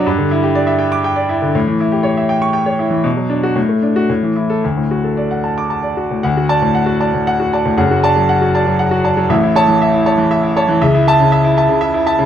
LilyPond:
\new Staff \with { instrumentName = "Grand piano" } { \time 3/4 \key d \major \tempo 4 = 119 << { r4. r16 d'''8 r8. | r4. r16 cis'''8 r8. | r8. fis'16 r8. fis'16 r8. a'16 | r4. r16 d'''8 r8. |
fis''16 fis'16 <d'' a''>16 a,16 fis''16 fis'16 <d'' a''>16 a,16 fis''16 fis'16 <d'' a''>16 a,16 | fis''16 fis'16 <d'' a''>16 fis16 fis''16 fis'16 <d'' a''>16 fis16 fis''16 fis'16 <d'' a''>16 fis16 | e''16 e'16 <cis'' a''>16 e16 e''16 e'16 <cis'' a''>16 e16 e''16 e'16 <cis'' a''>16 e16 | e''16 e'16 <e'' a''>16 cis16 e''16 e'16 <e'' a''>16 cis16 e''16 e'16 <e'' a''>16 cis16 | } \\ { g,16 d16 e'16 g'16 d''16 e''16 g''8 g''16 d''16 e'16 d16 | a,16 e16 e'16 g'16 cis''16 e''16 g''8 g''16 cis''16 e'16 e16 | b,16 fis16 d'8 a,16 a16 d'8 a,16 e16 e'8 | d,16 a,16 fis'16 a'16 d''16 fis''16 a''8 a''16 d''16 fis'16 a,16 |
d,2. | <fis,, fis,>2. | <a,, a,>2. | cis,2. | } >> }